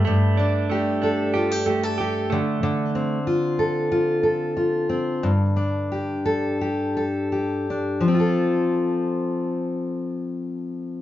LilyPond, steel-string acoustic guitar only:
\new Staff \with { instrumentName = "Steel-string acoustic guitar" } { \time 4/4 \key f \major \tempo 4 = 89 g,8 d'8 g'8 a'8 f'16 g'16 g'16 a'16 g'8 d8 | d8 c'8 f'8 a'8 f'8 a'8 f'8 c'8 | g,8 d'8 g'8 a'8 g'8 a'8 g'8 d'8 | <f c' f' a'>1 | }